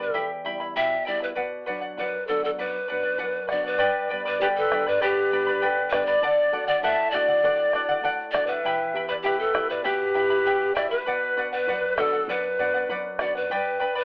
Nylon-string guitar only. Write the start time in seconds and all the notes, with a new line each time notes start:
Already playing: D3
0.17 E2
0.46 G3 B3 E4
0.76 B2
1.08 G3 B3 E4
1.38 B2
1.68 F#3 B3 D4
1.99 F#2
2.29 F#3 B3 D4
2.60 F#2
2.90 F#3 B3 D4
3.21 F#2
3.52 F#3 B3 D4
3.81 G2
4.12 G3 B3 D4
4.41 D3
4.72 G3 B3 D4
5.02 D3
5.31 G3 B3 D4
5.62 D3
5.92 G3 B3 D4
6.22 D3
6.53 A3 D4 F#4
6.84 A2
7.14 A3 D4 F#4
7.44 A2
7.74 A3 D4 F#4
8.04 A2
8.34 A3 D4 F#4
8.64 E3
8.93 B3 E4 G4
9.23 B2
9.54 B3 E4 G4
9.85 B2
10.15 B3 E4 G4
10.45 B2
10.76 B3 E4 G4
11.07 B2
11.36 B3 D4 F#4
11.68 F#2
11.98 B3 D4 F#4
12.29 F#2
12.59 B3 D4 F#4
12.89 F#2
13.19 B3 D4 F#4
13.51 G2